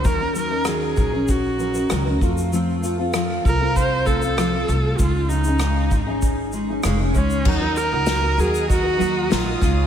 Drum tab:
CC |----------------|----------------|----------------|x---------------|
SH |x-x-x-x-x-xxx-xx|x-x-x-x-x-xxx-x-|x-xxx-x-x-x-x-xx|--x-x-xxx-x-x-x-|
SD |----r-------r---|----r-------r-r-|----r-------r---|----o-------o-o-|
BD |o-----o-o-----o-|------o-o-o-----|o-----o-o-----o-|o-------o-----o-|